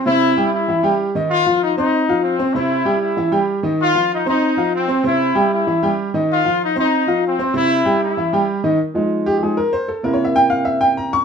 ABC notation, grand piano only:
X:1
M:4/4
L:1/8
Q:1/4=192
K:Fm
V:1 name="Grand piano"
[C,Cc]2 [G,Gg]2 [=E,=E=e] [G,Gg]2 [_E,_E_e]- | [E,Ee] [F,Ff]2 [Ccc']2 [F,Ff]2 [Ccc'] | [C,Cc]2 [G,Gg]2 [=E,=E=e] [G,Gg]2 [_E,_E_e]- | [E,Ee] [F,Ff]2 [Ccc']2 [F,Ff]2 [Ccc'] |
[C,Cc]2 [G,Gg]2 [=E,=E=e] [G,Gg]2 [_E,_E_e]- | [E,Ee] [F,Ff]2 [Ccc']2 [F,Ff]2 [Ccc'] | [C,Cc]2 [G,Gg]2 [=E,=E=e] [G,Gg]2 [_E,_E_e] | z3 G [GA] B c =A |
(3B d =e g f e g b d' |]
V:2 name="Grand piano" clef=bass
z8 | z8 | z8 | z8 |
z8 | z8 | z8 | z [F,A,E]3 [F,A,E] z3 |
[C,B,=E]8 |]